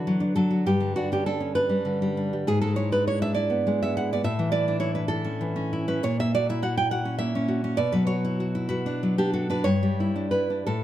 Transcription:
0.00 0.63 D3 medium
0.00 0.23 E3 soft
0.00 0.19 D4 soft
0.00 0.49 F#4 soft
0.00 0.35 B4 medium
0.07 0.35 F#3 medium
0.20 0.66 D4 medium
0.36 0.67 F#3 soft
0.36 0.65 A4 medium
0.50 0.66 F#4 soft
0.66 2.43 G2 medium
0.66 0.95 G4 medium
0.80 1.69 D3 soft
0.96 1.26 D4 medium
0.96 1.12 F#4 medium
1.12 1.39 C#4 soft
1.12 1.26 G4 medium
1.26 1.55 D4 soft
1.26 1.55 A4 medium
1.40 2.31 C#4 soft
1.55 2.16 D4 soft
1.55 2.42 B4 medium
1.69 2.01 G3 soft
1.85 2.46 D3 soft
2.02 2.32 G3 soft
2.17 2.47 D4 soft
2.33 2.47 G3 soft
2.47 4.21 G#2 medium
2.47 2.61 G#4 medium
2.61 3.22 G#3 soft
2.61 2.76 A4 medium
2.76 3.06 E4 soft
2.76 2.91 C#5 medium
2.92 3.21 D4 soft
2.92 3.06 B4 medium
3.07 3.35 E4 soft
3.07 3.21 C#5 medium
3.22 4.12 D4 soft
3.22 3.34 E5 medium
3.35 3.96 E4 soft
3.35 3.79 D5 medium
3.50 3.82 B3 soft
3.67 4.24 G#3 medium
3.83 4.12 B3 soft
3.83 3.96 E5 medium
3.97 4.26 E4 soft
3.97 4.11 F#5 medium
4.13 4.27 B3 soft
4.13 4.24 D5 medium
4.24 5.98 A2 medium
4.24 4.52 E5 medium
4.39 5.27 E3 soft
4.52 4.79 E4 medium
4.52 4.79 D5 medium
4.68 4.95 D4 soft
4.80 5.08 E4 soft
4.80 4.94 C#5 medium
4.95 5.87 D4 soft
4.95 5.08 B4 medium
5.08 5.72 E4 soft
5.08 5.83 A4 medium
5.25 5.55 C#4 soft
5.41 6.02 E3 soft
5.56 5.87 C#4 medium
5.73 6.03 E4 soft
5.88 6.03 C#4 medium
5.88 6.03 B4 medium
6.03 7.74 A#2 medium
6.03 6.18 C#5 medium
6.20 7.06 A#3 soft
6.20 6.33 E5 medium
6.35 6.61 F#4 medium
6.35 6.48 D5 medium
6.49 6.76 E4 soft
6.49 6.63 E5 medium
6.62 6.91 F#4 medium
6.62 6.76 F#5 medium
6.77 7.64 E4 soft
6.77 6.91 G5 medium
6.91 7.47 F#4 medium
6.91 7.18 F#5 medium
7.05 7.34 C#4 soft
7.19 7.78 A#3 medium
7.19 7.75 E5 medium
7.35 7.63 C#4 medium
7.48 7.78 F#4 medium
7.64 7.78 C#4 medium
7.77 9.61 B2 medium
7.77 7.92 D5 loud
7.92 8.85 F#3 medium
7.92 8.06 B4 medium
8.07 8.39 F#4 medium
8.07 8.66 C#5 medium
8.25 8.54 E4 medium
8.40 8.68 F#4 medium
8.55 9.50 E4 soft
8.69 9.32 F#4 medium
8.69 9.15 B4 medium
8.86 9.18 D4 medium
9.03 9.66 F#3 medium
9.18 9.48 D4 medium
9.18 9.33 G4 medium
9.33 9.65 F#4 soft
9.33 9.49 A4 medium
9.50 9.65 D4 medium
9.50 9.66 B4 medium
9.64 10.62 G2 medium
9.64 10.27 C#5 medium
9.83 10.65 G3 soft
10.00 10.31 E4 medium
10.16 10.49 D4 soft
10.31 10.65 E4 soft
10.31 10.64 B4 medium
10.50 10.66 D4 soft
10.67 10.84 A2 medium
10.67 10.83 A4 medium

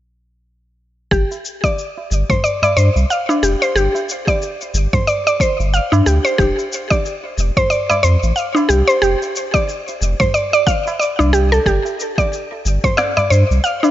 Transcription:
1.11 1.25 G1 medium
1.11 1.30 G4 medium
1.11 kick loud
1.11 shaker soft
1.31 tabla tin medium
1.31 shaker soft
1.45 shaker medium
1.64 1.77 D5 medium
1.64 kick medium
1.64 tabla tin soft
1.64 shaker soft
1.79 shaker soft
1.98 tabla tin soft
2.11 2.24 G1 loud
2.11 shaker medium
2.30 2.43 C5 medium
2.30 kick medium
2.30 tabla ge medium
2.30 shaker soft
2.44 2.61 D5 medium
2.44 shaker soft
2.63 2.75 D5 loud
2.63 tabla na medium
2.63 tabla tin soft
2.63 tabla ge medium
2.63 shaker soft
2.77 2.90 G2 medium
2.77 2.95 C5 medium
2.77 shaker medium
2.96 3.05 C2 medium
2.96 tabla tin soft
2.96 shaker soft
3.10 3.27 F5 medium
3.10 shaker soft
3.29 3.41 D4 medium
3.29 tabla na medium
3.29 shaker soft
3.43 3.55 F1 medium
3.43 3.61 G4 medium
3.43 shaker medium
3.62 3.75 C5 medium
3.62 shaker soft
3.75 3.88 G1 loud
3.75 3.94 G4 medium
3.75 shaker soft
3.95 tabla tin medium
3.95 shaker soft
4.09 shaker medium
4.27 4.41 D5 loud
4.27 kick medium
4.27 tabla na soft
4.27 tabla tin soft
4.27 shaker soft
4.42 shaker soft
4.61 tabla tin soft
4.61 shaker soft
4.74 4.87 G1 loud
4.74 shaker medium
4.93 5.07 C5 medium
4.93 kick loud
4.93 tabla ge medium
4.93 shaker soft
5.07 5.25 D5 medium
5.07 shaker soft
5.27 5.39 D5 loud
5.27 shaker soft
5.40 5.59 C5 medium
5.40 kick loud
5.40 shaker medium
5.59 5.80 G1 medium
5.59 tabla tin soft
5.59 shaker soft
5.74 5.91 F5 medium
5.74 shaker soft
5.92 6.02 G2 medium
5.92 6.05 D4 medium
5.92 tabla na medium
5.92 shaker soft
6.06 6.19 D2 medium
6.06 6.24 G4 medium
6.06 tabla tin medium
6.06 shaker medium
6.25 6.38 C5 loud
6.25 shaker soft
6.38 6.52 F1 medium
6.38 6.57 G4 loud
6.38 kick loud
6.38 shaker soft
6.58 tabla tin medium
6.58 shaker soft
6.73 shaker medium
6.90 7.04 D5 medium
6.90 kick loud
6.90 tabla tin soft
6.90 shaker soft
7.06 shaker soft
7.24 tabla tin soft
7.38 7.51 F1 loud
7.38 shaker medium
7.57 7.70 C5 loud
7.57 kick loud
7.57 tabla ge medium
7.57 shaker soft
7.70 7.88 D5 loud
7.70 shaker soft
7.89 8.02 D5 loud
7.89 tabla na medium
7.89 tabla tin soft
7.89 tabla ge medium
7.89 shaker soft
8.03 8.17 F2 medium
8.03 8.22 C5 medium
8.03 shaker medium
8.23 8.32 A1 medium
8.23 tabla tin soft
8.23 shaker soft
8.36 8.54 F5 medium
8.36 shaker soft
8.55 8.68 D4 medium
8.55 tabla na medium
8.55 shaker soft
8.69 8.83 C2 loud
8.69 8.88 G4 medium
8.69 shaker medium
8.88 9.02 C5 loud
8.88 shaker soft
9.02 9.15 F1 medium
9.02 9.21 G4 loud
9.02 shaker soft
9.22 tabla tin soft
9.22 shaker soft
9.36 shaker medium
9.54 9.68 D5 medium
9.54 kick medium
9.54 tabla na soft
9.54 tabla tin soft
9.54 shaker soft
9.69 shaker soft
9.88 tabla tin soft
9.88 shaker soft
10.01 10.14 F1 medium
10.01 shaker medium
10.20 10.34 C5 medium
10.20 kick medium
10.20 tabla ge medium
10.20 shaker soft
10.34 10.52 D5 loud
10.34 shaker soft
10.53 10.66 D5 loud
10.53 shaker soft
10.67 10.84 F5 medium
10.67 kick loud
10.67 shaker medium
10.86 tabla na medium
10.86 tabla tin medium
10.86 shaker soft
11.00 11.17 D5 medium
11.00 shaker soft
11.19 11.59 C2 medium
11.19 11.32 D4 medium
11.19 tabla na medium
11.19 shaker soft
11.33 11.51 G4 loud
11.33 tabla na soft
11.33 tabla tin medium
11.33 shaker medium
11.52 11.66 A4 medium
11.52 shaker soft
11.66 11.79 G1 medium
11.66 11.85 G4 medium
11.66 kick loud
11.66 shaker soft
11.85 tabla tin medium
11.85 shaker soft
12.00 shaker medium
12.18 12.32 D5 medium
12.18 kick medium
12.18 tabla tin soft
12.18 shaker soft
12.33 shaker soft
12.52 tabla tin soft
12.65 12.78 G1 loud
12.65 shaker medium
12.84 12.98 C5 medium
12.84 kick medium
12.84 tabla ge medium
12.84 shaker soft
12.97 13.15 D5 medium
12.97 snare medium
12.97 shaker soft
13.17 13.30 D5 loud
13.17 tabla na medium
13.17 tabla tin soft
13.17 tabla ge medium
13.17 shaker soft
13.30 13.44 G2 medium
13.30 13.49 C5 medium
13.30 shaker medium
13.51 13.60 C2 medium
13.51 tabla tin soft
13.51 shaker soft
13.64 13.81 F5 medium
13.64 shaker soft
13.83 13.91 D4 medium
13.83 tabla na medium
13.83 shaker soft

